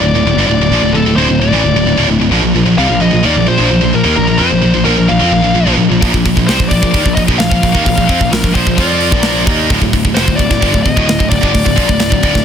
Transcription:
0.00 D1 D2 A2 D5
0.14 D1 D2 A2
0.24 D1 D2 A2
0.35 G1 G2
0.40 D3
0.47 D1 D2 D5
0.51 A2
0.58 D1 D2 A2
0.70 A#1 A#2 F3
0.81 D1 D2 A2
0.93 D1 D2 A2 A4
1.05 D1 D2 A2
1.15 D1 D2 A2 C5
1.28 D1 D2 A2
1.40 D1 D2 A2 D5
1.51 A1 A2 E3
1.63 D1 D2 A2
1.74 D1 D2 A2
1.85 D1 D2 A2
1.97 D1 D2 A2
2.08 D1 D2 A2
2.20 D1 D2 A2
2.30 A#1 A#2 F3
2.42 A#1 A#2 F3
2.54 A#1 A#2 F3
2.65 A#1 A#2 F3
2.77 C2 C3 G3 F5
2.89 A#1 A#2 F3
3.00 A#1 A#2 F3 D#5
3.11 A#1 A#2 F3
3.23 D#2 D#3 A#3 D5
3.36 A#1 A#2 F3
3.46 A#1 A#2 F3 C5
3.57 A#1 A#2 F3
3.70 A#1 A#2 F3
3.81 A#1 A#2 F3
3.93 A#1 A#2 F3 A#4
4.04 D#2 D#3 A#3
4.16 A#1 A#2 F3 A#4
4.27 A#1 A#2 F3
4.38 F2 F3 C4 C5
4.50 A#1 A#2 F3
4.62 A#1 A#2 F3
4.74 A#1 A#2 F3
4.85 A#1 A#2 F3 A#4
4.98 A#1 A#2 F3
5.08 A#1 A#2 F3 F5
5.20 F2 F3 C4
5.32 A#1 A#2 F3
5.42 A#1 A#2 F3
5.54 A#1 A#2 F3
5.66 A#1 A#2 F3
5.77 A#1 A#2 F3
5.90 A#1 A#2 F3
6.02 A#1 A#2 F3, kick, open hi-hat
6.14 A#1 A#2 F3, kick
6.26 A#1 A#2 F3, kick, open hi-hat
6.37 A#1 A#2 F3, kick
6.47 C2 C3 G3 C5, snare, open hi-hat
6.60 A#1 A#2 F3, kick
6.68 A#1 A#2 F3 D5, kick, open hi-hat
6.82 A#1 A#2 F3, kick
6.94 D#2 D#3 A#3, kick, open hi-hat
7.05 A#1 A#2 F3, kick
7.15 A#1 A#2 F3 D#5, kick, open hi-hat
7.28 A#1 A#2 F3, kick
7.38 A#1 A#2 F3 F5, snare, open hi-hat
7.51 A#1 A#2 F3, kick
7.63 A#1 A#2 F3, kick, open hi-hat
7.75 D#2 D#3 A#3, kick
7.85 A#1 A#2 F3 F5, kick, open hi-hat
7.98 A#1 A#2 F3, kick
8.06 F2 F3 C4, kick, open hi-hat
8.10 C4
8.20 A#1 A#2 F3, kick
8.32 A#1 A#2 F3 A#4, snare, open hi-hat
8.44 A#1 A#2 F3, kick
8.55 A#1 A#2 F3 C5, kick, open hi-hat
8.63 A#1 A#2 F3, kick
8.68 A#2 F3
8.75 F2 F3 C4 F4 D5, kick, open hi-hat
8.79 F3 C4 F4
9.00 open hi-hat
9.12 A#1 A#2 F3 A#3, kick
9.23 snare, open hi-hat
9.47 D#2 D#3 A#3 D#4, kick, open hi-hat
9.70 D1 D2 A2, kick, open hi-hat
9.81 D1 D2 A2, kick
9.93 D1 D2 A2, kick, open hi-hat
10.04 D1 D2 A2, kick
10.15 F1 F2 C3 C5, snare, open hi-hat
10.27 D1 D2 A2, kick
10.36 D1 D2 A2 D5, kick, open hi-hat
10.50 D1 D2 A2, kick, snare
10.61 G1 G2 D3, kick, open hi-hat
10.73 D1 D2 A2, kick
10.82 D1 D2 A2 D#5, kick, open hi-hat
10.96 D1 D2 A2, kick
11.08 D1 D2 A2, snare, open hi-hat
11.19 D1 D2 A2, kick
11.30 D1 D2 A2 D5, kick, open hi-hat
11.41 G1 G2 D3, kick
11.53 D1 D2 A2, kick, open hi-hat
11.65 D1 D2 A2, kick
11.76 A#1 A#2 F3, kick, open hi-hat
11.88 D1 D2 A2, kick
11.99 D1 D2 A2, snare, open hi-hat
12.10 D1 D2 A2, kick
12.22 D1 D2 A2, kick, open hi-hat
12.33 D1 D2 A2, kick, snare

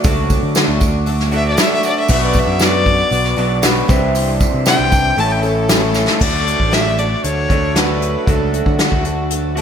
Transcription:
Already playing: A4 D5 F#5 D6
0.04 C#2 D3 F#3 A3 D4 F#4, kick, open hi-hat, tambourine
0.30 kick, open hi-hat, tambourine
0.43 D3
0.55 D3 F#3 A3 D4 F#4, snare, open hi-hat, tambourine
0.68 D2
0.81 A3 D4 F#4, kick, open hi-hat, tambourine
1.06 F#3 A3 D4 F#4, open hi-hat, tambourine
1.20 snare
1.31 D3 A3 D4 F#4, open hi-hat, tambourine
1.35 E5
1.48 D5
1.57 D3 F#3 A3 D4 F#4, snare, open hi-hat, tambourine
1.61 E5
1.74 E5
1.83 D5, open hi-hat, tambourine
1.99 E5
2.08 B1 B2 F#3 B3 D4 F#4 B4 E5 F#5, kick, crash, tambourine
2.25 D5
2.33 kick, open hi-hat, tambourine
2.38 E5
2.47 F#2
2.59 B2 F#3 B3 D4 F#4, snare, open hi-hat, tambourine
2.64 D5
2.85 B3 D4 F#4, kick, open hi-hat
3.10 B1 F#3 B3 D4 F#4, open hi-hat, tambourine
3.25 snare
3.36 B1 B2 F#3 B3 D4 F#4, open hi-hat, tambourine
3.62 B2 F#3 B3 D4 F#4, snare, open hi-hat, tambourine
3.88 C2 C3 E3 G3 C4 D4 E4 G4 E5 C6, kick, open hi-hat, tambourine
4.15 open hi-hat, tambourine
4.40 kick, open hi-hat, tambourine
4.54 C3
4.66 C3 E3 C4 D4 G4 G5, snare, open hi-hat, tambourine
4.79 C2
4.91 C4 D4 G4, kick, open hi-hat, tambourine
5.16 A1 A2 E3 A3 C#4 E4 A4 C#5 A5 C#6, open hi-hat
5.32 G5
5.43 A3 C#4 E4 A4, open hi-hat, tambourine
5.69 A2 E3 A3 C#4 E4 A4, snare, open hi-hat, tambourine
5.94 snare, tambourine
6.08 snare
6.20 D2 D3 F#3 A3 D4 F#4 A4 D5 F#5 A5, kick, crash
6.47 closed hi-hat
6.60 A1, kick
6.71 D3 F#3 A3 D4 F#4 E5, snare, closed hi-hat
6.98 A3 D4 F#4 D5, closed hi-hat
7.24 D2 F#3 A3 D4 F#4 C#5, closed hi-hat
7.50 D2 D3 A3 D4 F#4, kick, closed hi-hat
7.76 D3 F#3 A3 D4 F#4 B4, snare, closed hi-hat
8.02 closed hi-hat
8.26 C#2 D3 F#3 A3 D4 F#4 A4, kick, closed hi-hat
8.54 F#4, closed hi-hat
8.66 D3, kick
8.79 D3 F#3 A3 D4 F#4, snare, closed hi-hat
8.92 D2, kick
9.05 A3 D4 F#4, closed hi-hat
9.30 F#3 A3 D4 F#4, closed hi-hat
9.57 D3 A3 D4 F#4 A4, closed hi-hat

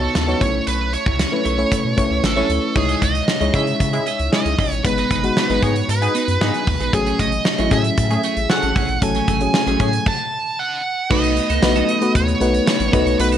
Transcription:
Already playing: B3 D#4 F#4 A4 C#5
0.02 D#4 F#4 C#5
0.15 D#2, snare, closed hi-hat
0.27 B3 D#4 F#4 C#5, muted clean electric guitar stroke
0.40 B1 A3 C#4 E4 A4 C#5, kick, closed hi-hat
0.54 muted clean electric guitar stroke
0.67 B1 E4 A4 B4 C#5, closed hi-hat
0.80 muted clean electric guitar stroke
0.93 E4 A4 C#5, closed hi-hat
1.06 C#2 E4 A4 C#5, kick
1.19 snare, closed hi-hat
1.31 A3 C#4 E4 B4, muted clean electric guitar stroke
1.45 B1 E4 A4 C#5, closed hi-hat
1.58 A3 C#4 E4 C#5, muted clean electric guitar stroke
1.71 E4 A4 C#5, kick, closed hi-hat
1.85 B2, muted clean electric guitar stroke
1.97 B1 A3 C#4 E4 C#5, muted clean electric guitar stroke, kick, closed hi-hat
2.10 C#2 E4 A4 C#5
2.23 A1 A4, snare, closed hi-hat
2.36 A3 C#4 E4 A4 C#5
2.49 D2 E4 A4 C#5, closed hi-hat
2.63 muted clean electric guitar stroke
2.75 C#2 G#3 D#4 E4 G#4 C#5, muted clean electric guitar stroke, kick, crash
2.89 E4 G#4 D#5, closed hi-hat
3.02 C#2 E4 G#4 D#5, kick, closed hi-hat
3.15 muted clean electric guitar stroke, closed hi-hat
3.28 muted clean electric guitar stroke, snare
3.40 C#2 G#3 D#4 E4 G#4 C#5 D#5, closed hi-hat
3.53 C#3 G#3 C#4 E4 G#4 C#5 D#5 E5, kick, closed hi-hat
3.67 muted clean electric guitar stroke, closed hi-hat
3.80 C#3, muted clean electric guitar stroke, kick, closed hi-hat
3.93 G#3 E4 G#4, muted clean electric guitar stroke, closed hi-hat
4.06 E4 G#4 D#5, closed hi-hat
4.19 C#2, muted clean electric guitar stroke, closed hi-hat
4.32 G#3 E4 G#4 D#5, snare
4.46 C#2, muted clean electric guitar stroke, closed hi-hat
4.59 A#1 E4 G#4 D#5, kick, open hi-hat
4.72 A1, muted clean electric guitar stroke, closed hi-hat
4.84 G#1 G#3 B3 D#4 B4, muted clean electric guitar stroke, kick, closed hi-hat
4.98 B3 D#4 G#4, closed hi-hat
5.11 G#1 B3 D#4 G#4, kick, closed hi-hat
5.23 G#3 B3 D#4 F#4, muted clean electric guitar stroke, closed hi-hat
5.37 muted clean electric guitar stroke, snare
5.49 G#1 G#3 B3 D#4 G#4 B4, closed hi-hat
5.63 G#2 B3 D#4 G#4 C#5, kick, closed hi-hat
5.76 muted clean electric guitar stroke, closed hi-hat
5.89 G#2 B4, muted clean electric guitar stroke, closed hi-hat
6.02 B3 D#4 G#4, muted clean electric guitar stroke, closed hi-hat
6.15 B3 D#4 G#4, closed hi-hat
6.28 F#2, muted clean electric guitar stroke, closed hi-hat
6.41 G#2 B3 D#4 G#4 B4, snare
6.54 muted clean electric guitar stroke, closed hi-hat
6.67 D#2, muted clean electric guitar stroke, kick, open hi-hat
6.80 A#1 B3 D#4 G#4, closed hi-hat
6.93 A1 F#3 A3 C#4 G#4, kick, closed hi-hat
7.06 A3 C#4 G#4, closed hi-hat
7.19 A1 A3 C#4 G#4 D#5, kick, closed hi-hat
7.32 muted clean electric guitar stroke, closed hi-hat
7.45 muted clean electric guitar stroke, snare
7.58 A1 F#3 A3 C#4 E4 G#4, closed hi-hat
7.71 A2 F#3 A3 C#4 G#4 E5, kick, closed hi-hat
7.84 muted clean electric guitar stroke, closed hi-hat
7.98 A2, muted clean electric guitar stroke, kick, closed hi-hat
8.10 A3 C#4 G#4, muted clean electric guitar stroke, closed hi-hat
8.23 A3 C#4 G#4, closed hi-hat
8.37 A1, muted clean electric guitar stroke, closed hi-hat
8.50 C#4 F#4 A4 F#5, snare
8.62 A1, muted clean electric guitar stroke, closed hi-hat
8.76 B1 A3 C#4 G#4, kick, open hi-hat
8.89 A#1, muted clean electric guitar stroke, closed hi-hat
9.02 A1 F#3 A3 C#4 A4 G#5, muted clean electric guitar stroke, kick, closed hi-hat
9.15 A3 C#4 G#4, closed hi-hat
9.28 A1 A3 C#4 G#4, kick, closed hi-hat
9.41 F#3 A3 C#4 G#4, muted clean electric guitar stroke, closed hi-hat
9.54 muted clean electric guitar stroke, snare
9.67 A1 F#3 A3 C#4 G#4, closed hi-hat
9.80 A2 A3 C#4 G#4 G#5, kick, closed hi-hat
9.93 muted clean electric guitar stroke, closed hi-hat
10.06 A5, kick, crash
10.59 F#5
11.10 B1 A3 B3 D#4 F#4 A4 B4 D#5, kick, crash
11.24 closed hi-hat
11.37 muted clean electric guitar stroke, closed hi-hat
11.50 C#2 B3 D#4 A4, closed hi-hat
11.62 B1 A3 B3 D#4 F#4 B4, muted clean electric guitar stroke, snare, tambourine
11.76 B3 D#4 A4, closed hi-hat
11.89 B3 D#4 A4, closed hi-hat
12.01 A3 B3 D#4 F#4 B4, muted clean electric guitar stroke, closed hi-hat
12.15 D#2 C#5, muted clean electric guitar stroke, kick, closed hi-hat
12.27 muted clean electric guitar stroke, closed hi-hat
12.40 B1 A3 B3 D#4 F#4 B4, closed hi-hat
12.54 muted clean electric guitar stroke, closed hi-hat
12.67 muted clean electric guitar stroke, snare, tambourine
12.79 A1, muted clean electric guitar stroke, closed hi-hat
12.92 C#2 A3 B3 D#4 F#4 A4 B4, kick, closed hi-hat
13.05 C2 B3 D#4 A4, closed hi-hat
13.19 B1 A3 B3 D#4 F#4 B4, muted clean electric guitar stroke, closed hi-hat
13.32 B3 D#4 A4, closed hi-hat

